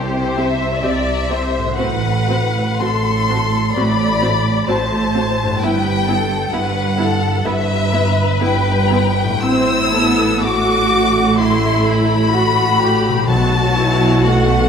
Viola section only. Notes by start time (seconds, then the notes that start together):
0.36 C4 G4
0.82 C4 G4
1.30 C4 G4
1.78 C4 F#4
2.28 C4 F#4
2.80 C4 F#4
3.30 C4 F#4
3.76 C4 F#4
4.21 C4 F#4
4.68 C4 F#4
5.15 C4 F#4
5.63 B3 E4
6.08 B3 E4
6.53 B3 E4
6.98 B3 E4
7.45 B3 E4
7.93 B3 E4
8.40 B3 E4
8.90 B3 E4
9.42 C4 E4
9.93 B3
10.41 A3 F#4
11.36 E4
12.32 F#4
13.27 F#3 F#4
13.75 E4
14.23 A3 F#4